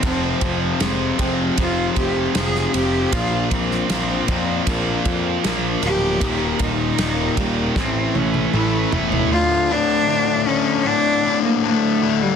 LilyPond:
<<
  \new Staff \with { instrumentName = "Cello" } { \time 4/4 \key bes \major \tempo 4 = 78 c'4 r4 f'8 g'8 aes'8 g'8 | f'8 c'2~ c'8 r8 g'8~ | g'8 ees'4 bes8 c'8 cis'8 e'8 r8 | \key d \minor f'8 d'4 cis'8 d'8. bes16 a8. g16 | }
  \new Staff \with { instrumentName = "Steel-string acoustic guitar" } { \time 4/4 \key bes \major f,8 f8 aes8 c'8 f8 c'8 f'8 c'8 | bes,8 bes4 f'8 bes8 f'8 bes'8 f'8 | ees,8 bes,8 ees8 g8 a,8 e'8 a'8 e'8 | \key d \minor r1 | }
  \new Staff \with { instrumentName = "Distorted electric guitar" } { \clef bass \time 4/4 \key bes \major <f, c f>4 <f, c f>8 <f, c f>8 <f, c f>4 <f, c f>8 <f, c f>8 | <bes, f bes>4 <bes, f bes>8 <bes, f bes>8 <bes, f bes>4 <bes, f bes>8 <bes, f bes>8 | <ees, bes, ees>4 <ees, bes, ees>8 <ees, bes, ees>8 <a, e a>4 <a, e a>8 <a, e a>8 | \key d \minor r1 | }
  \new Staff \with { instrumentName = "Overdriven electric guitar" } { \clef bass \time 4/4 \key bes \major <f, c f>4 <f, c f>8 <f, c f>8 <f, c f>4 <f, c f>8 <f, c f>8 | <bes, f bes>4 <bes, f bes>8 <bes, f bes>8 <bes, f bes>4 <bes, f bes>8 <bes, f bes>8 | <ees, bes, ees>4 <ees, bes, ees>8 <ees, bes, ees>8 <a, e a>4 <a, e a>8 <a, e a>8 | \key d \minor <d, a, d>8 <d, a, d>8 <d, a, d>8 <d, a, d>8 <d, a, d>8 <d, a, d>8 <d, a, d>8 <d, a, d>8 | }
  \new Staff \with { instrumentName = "Picked electric bass" } { \clef bass \time 4/4 \key bes \major f,,8 f,,8 f,,8 f,,8 f,,8 f,,8 f,,8 f,,8 | bes,,8 bes,,8 bes,,8 f,8 bes,,8 f,8 bes,,8 d,,8 | ees,,8 ees,,8 ees,,8 ees,,8 a,,8 a,,8 a,,8 e,,8 | \key d \minor r1 | }
  \new DrumStaff \with { instrumentName = "Drums" } \drummode { \time 4/4 <bd cymr>8 <bd cymr>8 <cymr sn>8 <bd cymr>8 <bd cymr>8 <bd cymr>8 <cymr sn>16 sn16 cymr8 | <bd cymr>8 <bd cymr>16 sn16 <cymr sn>8 <bd cymr>8 <bd cymr>8 <bd cymr>8 <cymr sn>8 cymr8 | <bd cymr>8 <bd cymr>8 <cymr sn>8 <bd cymr>8 <bd sn>8 tommh16 tommh16 toml8 tomfh16 tomfh16 | r4 r4 r4 r4 | }
>>